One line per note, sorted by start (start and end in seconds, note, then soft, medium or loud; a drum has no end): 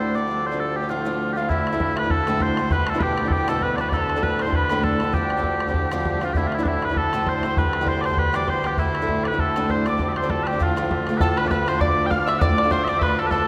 0.00 0.15 D2 medium
0.00 13.48 D2 medium
0.00 0.15 A2 medium
0.00 0.14 D3 medium
0.00 13.48 D3 medium
0.00 0.15 A3 medium
0.00 0.17 D4 medium
0.00 0.16 E4 medium
0.00 0.16 C5 medium
0.14 0.27 D3 medium
0.14 0.28 A3 medium
0.14 0.30 D4 medium
0.14 0.30 E4 medium
0.14 0.47 D5 medium
0.28 0.52 F3 soft
0.28 0.51 G3 soft
0.28 0.50 C4 medium
0.28 0.50 D4 medium
0.47 0.60 C5 medium
0.52 0.84 G2 medium
0.52 0.85 D3 medium
0.52 0.83 F3 medium
0.52 0.82 G3 medium
0.52 0.81 C4 medium
0.52 0.80 D4 medium
0.60 0.76 A4 medium
0.76 0.90 G4 medium
0.81 0.89 F3 soft
0.81 0.90 G3 soft
0.81 0.89 C4 soft
0.81 0.89 D4 soft
0.89 1.04 D2 medium
0.89 1.04 A2 medium
0.89 1.05 F3 medium
0.89 1.05 A3 medium
0.89 1.06 D4 medium
0.89 1.07 E4 medium
0.89 1.33 F4 medium
1.05 1.36 D2 medium
1.05 1.36 A2 medium
1.05 1.35 F3 medium
1.05 1.36 A3 medium
1.05 1.38 D4 medium
1.33 1.49 F3 medium
1.33 1.49 F4 medium
1.33 1.37 G4 medium
1.33 1.51 F5 medium
1.37 1.49 A3 medium
1.37 1.50 D4 medium
1.37 1.51 E4 medium
1.49 1.73 D3 soft
1.49 1.72 A3 medium
1.49 1.71 D4 medium
1.49 1.98 E4 medium
1.49 1.71 E4 medium
1.49 1.98 E5 medium
1.49 bodhran medium
1.67 bodhran medium
1.72 2.04 D2 medium
1.72 2.04 A2 medium
1.72 2.06 D3 medium
1.72 2.04 A3 medium
1.72 2.04 D4 medium
1.72 2.03 E4 medium
1.80 bodhran medium
1.96 2.11 B4 loud
1.96 2.12 B5 medium
1.96 bodhran medium
2.03 2.27 D3 soft
2.03 2.27 A3 soft
2.03 2.27 D4 soft
2.03 2.27 E4 soft
2.03 bodhran soft
2.10 2.42 A4 loud
2.10 2.43 A5 medium
2.10 bodhran medium
2.27 2.57 D2 medium
2.27 2.58 A2 medium
2.27 2.57 D3 medium
2.27 2.58 A3 medium
2.27 2.59 D4 medium
2.27 2.60 E4 loud
2.27 bodhran medium
2.40 2.72 C5 loud
2.40 2.72 C6 loud
2.40 bodhran medium
2.49 bodhran soft
2.57 2.70 D3 medium
2.57 2.72 A3 medium
2.57 2.72 D4 medium
2.57 2.73 E4 medium
2.57 bodhran medium
2.70 2.94 G3 medium
2.70 2.94 B3 medium
2.70 2.94 D4 medium
2.70 2.93 E4 medium
2.70 2.90 B4 loud
2.70 2.89 B5 loud
2.70 bodhran loud
2.87 2.99 A4 medium
2.87 3.03 A5 medium
2.87 bodhran medium
2.94 3.26 E2 medium
2.94 3.26 B2 medium
2.94 3.26 G3 medium
2.94 3.25 B3 medium
2.94 3.25 D4 medium
2.94 3.23 E4 medium
2.99 3.28 G4 loud
2.99 3.03 B4 loud
2.99 3.31 G5 medium
2.99 bodhran loud
3.18 bodhran medium
3.24 3.48 G3 soft
3.24 3.48 B3 medium
3.24 3.49 D4 soft
3.24 3.48 E4 soft
3.24 bodhran soft
3.28 3.33 A4 medium
3.28 3.49 G5 medium
3.28 bodhran loud
3.33 3.49 G4 loud
3.48 3.78 E2 loud
3.48 3.79 B2 medium
3.48 3.77 G3 medium
3.48 3.78 B3 medium
3.48 3.80 D4 medium
3.48 3.80 E4 medium
3.48 3.63 A4 medium
3.48 3.64 A5 medium
3.48 bodhran medium
3.61 3.76 B4 loud
3.61 3.78 B5 medium
3.61 bodhran medium
3.70 bodhran soft
3.76 3.92 G3 medium
3.76 3.93 B3 medium
3.76 3.81 D5 medium
3.76 3.94 B5 medium
3.76 bodhran medium
3.81 3.93 D4 medium
3.81 3.94 E4 medium
3.81 3.89 B4 medium
3.89 4.16 D3 medium
3.89 3.94 D5 loud
3.89 4.25 A5 medium
3.89 bodhran medium
3.94 4.16 A3 medium
3.94 4.15 D4 medium
3.94 4.15 E4 medium
3.94 4.23 A4 loud
4.10 bodhran medium
4.16 4.48 D2 medium
4.16 4.47 A2 medium
4.16 4.49 D3 medium
4.16 4.47 A3 medium
4.16 4.47 D4 medium
4.16 4.45 E4 medium
4.23 4.42 B4 loud
4.23 4.39 B5 medium
4.23 bodhran medium
4.39 4.55 C5 medium
4.39 4.55 C6 medium
4.39 bodhran medium
4.46 4.70 D3 soft
4.46 4.71 A3 soft
4.46 4.70 D4 medium
4.46 4.70 E4 medium
4.46 bodhran soft
4.53 4.84 B4 medium
4.53 4.85 B5 medium
4.53 bodhran medium
4.69 5.00 D2 medium
4.69 5.01 A2 medium
4.69 5.00 D3 loud
4.69 5.00 A3 medium
4.69 5.03 D4 medium
4.69 5.02 E4 medium
4.69 bodhran medium
4.83 5.14 A4 medium
4.83 5.15 A5 medium
4.83 bodhran medium
4.92 bodhran soft
5.00 5.12 D3 medium
5.00 5.14 A3 medium
5.00 5.15 D4 medium
5.00 5.16 E4 medium
5.00 bodhran medium
5.13 5.37 F3 medium
5.13 5.37 G3 medium
5.13 5.36 D4 medium
5.13 6.25 G4 medium
5.13 5.75 G5 medium
5.13 bodhran medium
5.30 bodhran medium
5.37 5.69 G2 medium
5.37 5.69 D3 medium
5.37 5.69 F3 medium
5.37 5.68 G3 medium
5.37 5.67 C4 medium
5.37 5.66 D4 medium
5.43 bodhran medium
5.60 bodhran medium
5.67 5.91 F3 soft
5.67 5.91 G3 medium
5.67 5.92 C4 medium
5.67 5.91 D4 medium
5.67 bodhran soft
5.74 bodhran medium
5.91 6.22 G2 medium
5.91 6.22 D3 medium
5.91 6.20 F3 medium
5.91 6.21 G3 medium
5.91 6.22 C4 loud
5.91 6.23 D4 loud
5.91 bodhran medium
6.05 bodhran medium
6.13 bodhran soft
6.21 6.34 F3 medium
6.21 6.35 G3 medium
6.21 6.36 C4 medium
6.21 6.36 D4 medium
6.21 6.33 F4 medium
6.21 6.34 F5 medium
6.21 bodhran medium
6.33 6.59 D3 medium
6.33 6.58 A3 medium
6.33 6.37 G4 medium
6.33 6.64 E5 medium
6.33 bodhran medium
6.37 6.58 D4 medium
6.37 6.47 E4 medium
6.37 6.57 E4 medium
6.47 6.55 F4 medium
6.52 6.63 E4 medium
6.52 bodhran medium
6.59 6.90 D2 medium
6.59 6.90 A2 medium
6.59 6.90 D3 medium
6.59 6.90 A3 medium
6.59 6.89 D4 medium
6.59 6.89 E4 medium
6.63 6.68 D4 medium
6.63 6.85 E5 medium
6.63 bodhran medium
6.68 6.85 E4 medium
6.82 6.97 B4 medium
6.82 6.99 B5 medium
6.82 bodhran medium
6.89 7.13 D3 soft
6.89 7.14 A3 soft
6.89 7.14 D4 medium
6.89 7.13 E4 medium
6.89 bodhran soft
6.97 7.29 A4 loud
6.97 7.28 A5 medium
6.97 bodhran medium
7.13 7.44 D2 medium
7.13 7.44 A2 medium
7.13 7.42 D3 medium
7.13 7.43 A3 medium
7.13 7.44 D4 medium
7.13 7.46 E4 medium
7.13 bodhran medium
7.26 7.58 C5 medium
7.26 7.37 C6 medium
7.26 bodhran medium
7.35 7.47 C6 medium
7.35 bodhran soft
7.43 7.57 D3 medium
7.43 7.57 A3 medium
7.43 7.58 D4 medium
7.43 7.58 E4 medium
7.43 bodhran medium
7.47 7.56 C6 medium
7.57 7.81 E3 medium
7.57 7.81 G3 medium
7.57 7.80 B3 medium
7.57 7.80 G4 medium
7.57 7.88 B4 medium
7.57 7.89 B5 medium
7.57 bodhran loud
7.73 bodhran medium
7.81 8.12 C3 medium
7.81 8.12 E3 medium
7.81 8.12 G3 medium
7.81 8.10 B3 medium
7.81 8.09 G4 medium
7.87 8.02 C5 loud
7.87 8.04 C6 medium
7.87 bodhran medium
8.02 8.06 D5 medium
8.02 8.20 C6 medium
8.02 bodhran medium
8.06 8.19 C5 medium
8.10 8.33 G3 soft
8.10 8.34 B3 medium
8.10 8.34 G4 medium
8.10 bodhran soft
8.17 8.36 B4 loud
8.17 8.36 B5 medium
8.17 bodhran medium
8.33 8.64 C3 medium
8.33 8.62 E3 medium
8.33 8.63 G3 medium
8.33 8.65 B3 medium
8.33 8.66 G4 medium
8.33 8.50 D5 medium
8.33 8.50 D6 medium
8.33 bodhran medium
8.48 8.67 C5 loud
8.48 8.66 C6 medium
8.48 bodhran medium
8.56 bodhran soft
8.63 8.78 E3 medium
8.63 8.78 G3 medium
8.63 8.79 B3 medium
8.63 8.79 G4 medium
8.63 8.78 G5 medium
8.63 bodhran medium
8.78 9.02 D3 medium
8.78 9.01 A3 medium
8.78 9.01 D4 medium
8.78 9.24 E4 medium
8.78 9.28 E5 medium
8.78 bodhran medium
8.82 9.01 E4 medium
8.95 bodhran medium
9.02 9.33 D2 medium
9.02 9.33 A2 medium
9.02 9.35 D3 medium
9.02 9.33 A3 medium
9.02 9.33 D4 medium
9.02 9.31 E4 medium
9.08 bodhran medium
9.24 9.40 B4 medium
9.24 9.28 D5 medium
9.24 9.41 B5 medium
9.24 bodhran medium
9.32 9.55 D3 soft
9.32 9.56 A3 medium
9.32 9.56 D4 soft
9.32 9.56 E4 medium
9.32 bodhran soft
9.39 9.70 A4 loud
9.39 9.68 A5 medium
9.39 bodhran medium
9.56 9.86 D2 medium
9.56 9.86 A2 medium
9.56 9.85 D3 medium
9.56 9.85 A3 medium
9.56 9.87 D4 loud
9.56 9.87 E4 medium
9.56 bodhran medium
9.69 9.87 C5 medium
9.69 9.75 C6 medium
9.69 bodhran medium
9.78 bodhran soft
9.86 9.97 D3 medium
9.86 9.99 A3 medium
9.86 10.00 D4 medium
9.86 10.01 E4 medium
9.86 10.08 D5 medium
9.86 10.18 D6 medium
9.86 bodhran medium
9.98 10.22 F3 medium
9.98 10.22 G3 medium
9.98 10.22 C4 medium
9.98 10.21 D4 medium
9.98 bodhran medium
10.08 10.13 E5 medium
10.13 10.17 D5 medium
10.13 10.32 C6 medium
10.13 bodhran medium
10.17 10.30 C5 medium
10.22 10.54 G2 medium
10.22 10.57 D3 medium
10.22 10.56 F3 medium
10.22 10.54 G3 medium
10.22 10.53 C4 medium
10.22 10.52 D4 medium
10.30 10.43 A4 medium
10.30 10.49 A5 medium
10.30 bodhran medium
10.43 10.62 G4 medium
10.43 10.47 B4 medium
10.43 bodhran medium
10.48 10.60 G5 medium
10.53 10.59 F3 soft
10.53 10.60 G3 soft
10.53 10.60 C4 soft
10.53 10.60 D4 medium
10.53 bodhran soft
10.59 10.75 D2 medium
10.59 10.76 A2 medium
10.59 10.77 F3 medium
10.59 10.77 A3 medium
10.59 10.77 D4 medium
10.59 10.78 E4 medium
10.59 11.18 F4 medium
10.59 10.94 F5 medium
10.59 bodhran medium
10.76 11.07 D2 medium
10.76 11.07 A2 medium
10.76 11.07 F3 medium
10.76 11.09 A3 medium
10.76 11.10 D4 medium
10.76 bodhran medium
10.91 bodhran medium
10.99 bodhran soft
11.07 11.21 F3 medium
11.07 11.21 A3 medium
11.07 11.22 D4 medium
11.07 bodhran medium
11.11 11.22 E4 medium
11.18 11.44 D2 medium
11.18 11.44 A2 medium
11.18 11.38 A4 loud
11.18 11.38 A4 medium
11.18 11.21 B4 medium
11.18 11.38 A5 loud
11.18 bodhran loud
11.22 11.45 D3 medium
11.22 11.44 A3 medium
11.22 11.43 D4 medium
11.22 11.42 F4 medium
11.37 11.49 B4 medium
11.37 11.48 B4 medium
11.37 11.47 B5 medium
11.37 bodhran medium
11.43 11.49 D3 medium
11.43 11.50 A3 medium
11.43 11.51 D4 medium
11.43 11.50 F4 medium
11.48 11.65 D3 medium
11.48 11.66 A3 medium
11.48 11.66 B4 medium
11.48 11.68 B4 medium
11.48 11.51 D5 medium
11.48 11.53 A5 medium
11.48 11.69 B5 medium
11.48 bodhran loud
11.52 11.68 D4 medium
11.52 11.69 F4 medium
11.66 12.10 D3 medium
11.66 12.10 A3 medium
11.66 12.12 D4 medium
11.66 12.12 F4 medium
11.66 11.80 C5 medium
11.66 11.81 C5 loud
11.66 11.81 C6 loud
11.66 bodhran medium
11.80 12.09 D5 medium
11.80 12.06 D5 loud
11.80 12.12 D6 medium
11.80 bodhran medium
12.06 12.25 D3 medium
12.06 12.10 G5 loud
12.10 12.27 A3 medium
12.10 12.28 D4 medium
12.10 12.29 F4 medium
12.10 12.28 F5 loud
12.10 12.26 F5 medium
12.10 12.28 F6 loud
12.10 bodhran medium
12.27 12.41 D3 medium
12.27 12.41 A3 medium
12.27 12.42 D4 medium
12.27 12.42 F4 medium
12.27 12.40 E5 loud
12.27 12.38 E5 medium
12.27 12.42 E6 loud
12.27 bodhran medium
12.38 12.64 D2 medium
12.38 12.65 A2 medium
12.38 12.65 D3 medium
12.38 12.65 A3 medium
12.38 12.57 D5 loud
12.38 12.72 D5 loud
12.38 12.42 F#5 loud
12.38 12.73 D6 loud
12.38 bodhran loud
12.43 12.64 D4 medium
12.43 12.63 F4 medium
12.58 12.70 D5 medium
12.58 bodhran medium
12.64 12.69 D3 soft
12.64 12.71 A3 soft
12.64 12.71 D4 medium
12.64 12.71 F4 medium
12.70 12.85 D3 medium
12.70 12.87 A3 medium
12.70 12.88 D4 medium
12.70 12.89 F4 medium
12.70 12.84 C5 loud
12.70 13.00 C5 loud
12.70 12.90 C6 medium
12.70 bodhran loud
12.85 13.30 D3 medium
12.85 13.31 A3 medium
12.85 12.89 E5 loud
12.85 bodhran medium
12.89 13.33 D4 medium
12.89 13.32 F4 medium
12.89 12.99 D5 loud
12.89 13.04 D6 loud
12.99 13.17 B4 medium
12.99 13.19 B4 loud
12.99 13.03 E5 loud
12.99 13.18 B5 medium
12.99 bodhran medium
13.19 13.31 A4 medium
13.19 13.27 A4 medium
13.19 13.31 A5 medium
13.27 13.31 B4 loud
13.31 13.47 D3 medium
13.31 13.47 A3 medium
13.31 13.48 D4 medium
13.31 13.48 F4 medium
13.31 13.48 A4 loud
13.31 13.48 A4 medium
13.31 13.48 A5 medium
13.31 bodhran medium